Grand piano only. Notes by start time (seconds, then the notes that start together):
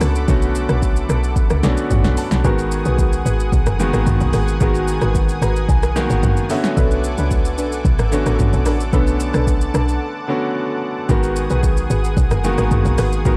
Already playing: D3 A3 B3 C#4 F#4
0.28 D3 A3 B3 C#4 F#4
1.63 D3 A3 B3 C#4 F#4 D5
1.91 F#5
2.18 A5
2.44 D#3 G#3 B3 F#4 A#4
3.79 D#3 G#3 A#3 B3 F#4
4.60 D#3 G#3 B3 F#4 A#4
5.43 A#5
5.69 G#5
5.96 D#3 G#3 A#3 B3 F#4 F#5
6.24 F#5
6.50 D3 A3 B3 C#4 F#4 E5
8.12 D3 A3 B3 C#4 F#4
8.93 D3 A3 B3 C#4 A4
10.28 D3 A3 B3 C#4 F#4
11.09 D#3 G#3 B3 F#4 A#4
12.44 D#3 G#3 A#3 B3 F#4
13.25 D#3 G#3 B3 F#4 A#4